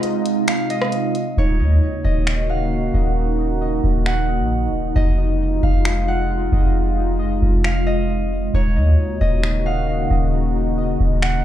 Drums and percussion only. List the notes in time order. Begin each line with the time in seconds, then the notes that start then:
0.03 closed hi-hat
0.26 closed hi-hat
0.48 finger snap, closed hi-hat
0.70 closed hi-hat
0.82 cross-stick
0.92 closed hi-hat
1.15 closed hi-hat
2.27 finger snap
4.06 finger snap
5.85 finger snap
7.64 finger snap
9.43 finger snap
11.22 finger snap